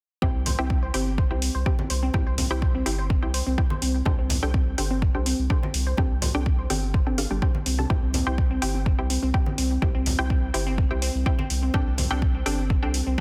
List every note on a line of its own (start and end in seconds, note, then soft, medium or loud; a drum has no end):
0.22 0.55 C2 loud
0.22 0.30 C4 loud
0.22 0.36 E4 medium
0.22 0.36 G4 medium
0.22 0.36 C5 medium
0.22 0.36 G5 loud
0.22 kick loud
0.22 low conga medium
0.46 0.57 C5 medium
0.46 open hi-hat loud
0.46 high conga medium
0.46 low conga medium
0.59 0.91 C2 loud
0.59 0.66 C4 loud
0.59 0.72 E4 loud
0.59 0.72 G4 medium
0.59 0.72 C5 medium
0.59 0.72 G5 loud
0.70 kick loud
0.83 0.93 C5 medium
0.94 1.27 G1 medium
0.94 1.02 C4 loud
0.94 1.08 E4 medium
0.94 1.08 G4 medium
0.94 1.08 C5 medium
0.94 1.08 G5 loud
0.94 open hi-hat medium
1.18 1.29 C5 medium
1.18 kick loud
1.31 1.50 C2 loud
1.31 1.38 C4 loud
1.31 1.63 E4 medium
1.31 1.63 G4 medium
1.31 1.63 C5 medium
1.31 1.63 G5 medium
1.42 open hi-hat medium
1.55 1.64 C2 medium
1.55 1.65 C5 medium
1.66 1.74 C4 loud
1.66 1.88 E4 medium
1.66 1.88 G4 medium
1.66 1.88 C5 medium
1.66 1.88 G5 loud
1.66 kick loud
1.79 high conga medium
1.90 2.10 C2 medium
1.90 2.02 C5 medium
1.90 open hi-hat medium
2.03 2.10 C4 loud
2.14 2.47 C2 loud
2.14 2.28 E4 medium
2.14 2.28 G4 medium
2.14 2.28 C5 medium
2.14 2.28 G5 loud
2.14 kick loud
2.14 low conga medium
2.27 2.37 C5 medium
2.38 2.46 C4 loud
2.38 open hi-hat loud
2.38 high conga medium
2.38 low conga medium
2.51 2.83 C2 loud
2.51 2.64 E4 loud
2.51 2.64 G4 medium
2.51 2.64 C5 medium
2.51 2.64 G5 loud
2.62 2.73 C5 medium
2.62 kick loud
2.75 2.82 C4 loud
2.86 3.19 G1 loud
2.86 3.00 E4 medium
2.86 3.00 G4 medium
2.86 3.00 C5 medium
2.86 3.00 G5 loud
2.86 open hi-hat medium
2.99 3.09 C5 medium
3.10 3.18 C4 loud
3.10 kick loud
3.23 3.42 C2 medium
3.23 3.55 E4 medium
3.23 3.55 G4 medium
3.23 3.55 C5 medium
3.23 3.55 G5 medium
3.34 3.45 C5 medium
3.34 open hi-hat loud
3.47 3.56 C2 medium
3.47 3.54 C4 medium
3.58 3.80 E4 medium
3.58 3.80 G4 medium
3.58 3.80 C5 medium
3.58 3.80 G5 loud
3.58 kick loud
3.70 3.81 C5 medium
3.70 high conga loud
3.82 4.02 C2 medium
3.82 3.90 C4 loud
3.82 open hi-hat medium
4.05 4.39 C2 medium
4.05 4.20 D4 medium
4.05 4.20 G4 medium
4.05 4.20 A4 medium
4.05 4.17 C5 medium
4.05 4.20 G5 loud
4.05 kick loud
4.05 low conga loud
4.19 4.25 C4 loud
4.30 open hi-hat loud
4.30 high conga medium
4.30 low conga medium
4.43 4.75 C2 loud
4.43 4.56 D4 loud
4.43 4.56 G4 medium
4.43 4.56 A4 medium
4.43 4.53 C5 medium
4.43 4.56 G5 loud
4.54 4.62 C4 loud
4.54 kick loud
4.78 5.11 G1 loud
4.78 4.92 D4 medium
4.78 4.92 G4 medium
4.78 4.92 A4 medium
4.78 4.89 C5 medium
4.78 4.92 G5 loud
4.78 open hi-hat loud
4.91 4.98 C4 loud
5.02 kick loud
5.15 5.34 C2 medium
5.15 5.47 D4 medium
5.15 5.47 G4 medium
5.15 5.47 A4 medium
5.15 5.25 C5 medium
5.15 5.47 G5 medium
5.26 5.34 C4 loud
5.26 open hi-hat loud
5.39 5.48 C2 medium
5.50 5.72 D4 medium
5.50 5.72 G4 medium
5.50 5.72 A4 medium
5.50 5.62 C5 medium
5.50 5.72 G5 loud
5.50 kick loud
5.63 5.70 C4 loud
5.63 high conga medium
5.74 5.94 C2 medium
5.74 open hi-hat medium
5.87 5.97 C5 medium
5.97 6.31 C2 medium
5.97 6.06 C4 loud
5.97 6.12 D4 medium
5.97 6.12 G4 medium
5.97 6.12 A4 medium
5.97 6.12 G5 loud
5.97 kick loud
5.97 low conga medium
6.22 6.33 C5 medium
6.22 open hi-hat loud
6.22 high conga medium
6.22 low conga medium
6.35 6.67 C2 loud
6.35 6.42 C4 loud
6.35 6.48 D4 loud
6.35 6.48 G4 medium
6.35 6.48 A4 medium
6.35 6.48 G5 loud
6.46 kick loud
6.59 6.69 C5 medium
6.70 7.03 G1 loud
6.70 6.78 C4 loud
6.70 6.84 D4 medium
6.70 6.84 G4 medium
6.70 6.84 A4 medium
6.70 6.84 G5 loud
6.70 open hi-hat medium
6.70 high conga medium
6.94 7.05 C5 medium
6.94 kick loud
7.07 7.26 G1 medium
7.07 7.14 C4 loud
7.07 7.16 D4 medium
7.07 7.16 G4 medium
7.07 7.16 A4 medium
7.07 7.16 G5 medium
7.18 7.26 B3 medium
7.18 7.29 D4 medium
7.18 7.29 G4 medium
7.18 7.29 A4 medium
7.18 7.29 F5 medium
7.18 open hi-hat loud
7.31 7.40 G1 loud
7.31 7.38 G3 medium
7.31 7.40 D4 medium
7.31 7.40 G4 medium
7.31 7.40 A4 medium
7.31 7.40 G5 medium
7.42 7.56 D4 medium
7.42 7.56 G4 medium
7.42 7.56 A4 medium
7.42 7.53 C5 medium
7.42 7.56 G5 loud
7.42 kick loud
7.55 high conga medium
7.66 7.86 C2 medium
7.66 7.74 C4 medium
7.66 open hi-hat medium
7.79 7.86 C3 medium
7.79 7.88 D4 medium
7.79 7.88 G4 medium
7.79 7.88 A4 medium
7.79 7.88 A5 medium
7.90 8.23 C2 loud
7.90 8.04 E4 loud
7.90 8.04 G4 medium
7.90 8.04 C5 medium
7.90 8.04 G5 loud
7.90 kick loud
7.90 low conga medium
8.03 8.10 C4 medium
8.13 8.22 C4 loud
8.13 open hi-hat loud
8.13 high conga medium
8.13 low conga medium
8.27 8.59 C2 loud
8.27 8.40 E4 loud
8.27 8.40 G4 medium
8.27 8.40 C5 medium
8.27 8.40 G5 loud
8.38 8.46 C4 medium
8.38 kick loud
8.51 8.58 C4 loud
8.62 8.95 G1 loud
8.62 8.76 E4 medium
8.62 8.76 G4 medium
8.62 8.76 C5 medium
8.62 8.76 G5 loud
8.62 open hi-hat medium
8.75 8.82 C4 medium
8.86 8.94 C4 loud
8.86 kick loud
8.99 9.18 C2 loud
8.99 9.31 E4 medium
8.99 9.31 G4 medium
8.99 9.31 C5 medium
8.99 9.31 G5 medium
9.10 9.18 C4 medium
9.10 open hi-hat loud
9.23 9.32 C2 medium
9.23 9.30 C4 loud
9.34 9.56 E4 medium
9.34 9.56 G4 medium
9.34 9.56 C5 medium
9.34 9.56 G5 medium
9.34 kick loud
9.46 9.54 C4 medium
9.46 high conga medium
9.58 9.78 C2 medium
9.58 9.66 C4 loud
9.58 open hi-hat medium
9.82 10.15 C2 loud
9.82 9.90 C4 medium
9.82 9.96 E4 medium
9.82 9.96 G4 medium
9.82 9.96 C5 medium
9.82 9.96 G5 loud
9.82 kick loud
9.82 low conga medium
9.95 10.02 C4 loud
10.06 open hi-hat loud
10.06 high conga medium
10.06 low conga medium
10.19 10.51 C2 loud
10.19 10.26 C4 medium
10.19 10.32 E4 loud
10.19 10.32 G4 medium
10.19 10.32 C5 medium
10.19 10.32 G5 loud
10.30 10.38 C4 loud
10.30 kick loud
10.54 10.87 G1 loud
10.54 10.62 C4 medium
10.54 10.68 E4 medium
10.54 10.68 G4 medium
10.54 10.68 C5 medium
10.54 10.68 G5 loud
10.54 open hi-hat medium
10.67 10.73 C4 loud
10.78 kick loud
10.91 11.10 C2 medium
10.91 10.98 C4 medium
10.91 11.23 E4 medium
10.91 11.23 G4 medium
10.91 11.23 C5 medium
10.91 11.23 G5 medium
11.02 11.10 C4 medium
11.02 open hi-hat medium
11.15 11.24 C2 medium
11.26 11.34 C4 medium
11.26 11.48 E4 medium
11.26 11.48 G4 medium
11.26 11.48 C5 medium
11.26 11.48 G5 loud
11.26 kick loud
11.39 11.45 C4 loud
11.39 high conga medium
11.50 11.70 C2 medium
11.50 open hi-hat medium
11.63 11.69 C4 medium
11.74 12.07 C2 loud
11.74 11.82 C4 loud
11.74 11.88 D4 medium
11.74 11.88 G4 medium
11.74 11.88 A4 medium
11.74 11.88 G5 loud
11.74 kick loud
11.74 low conga medium
11.98 12.06 C4 medium
11.98 open hi-hat loud
11.98 high conga medium
11.98 low conga medium
12.11 12.43 C2 loud
12.11 12.18 C4 loud
12.11 12.24 D4 loud
12.11 12.24 G4 medium
12.11 12.24 A4 medium
12.11 12.24 G5 loud
12.22 kick loud
12.35 12.42 C4 medium
12.46 12.79 G1 loud
12.46 12.54 C4 loud
12.46 12.60 D4 medium
12.46 12.60 G4 medium
12.46 12.60 A4 medium
12.46 12.60 G5 loud
12.46 open hi-hat medium
12.70 12.78 C4 medium
12.70 kick loud
12.83 13.02 C2 medium
12.83 12.90 C4 loud
12.83 13.15 D4 medium
12.83 13.15 G4 medium
12.83 13.15 A4 medium
12.83 13.15 G5 medium
12.94 open hi-hat medium
13.07 13.16 C2 medium
13.07 13.14 C4 medium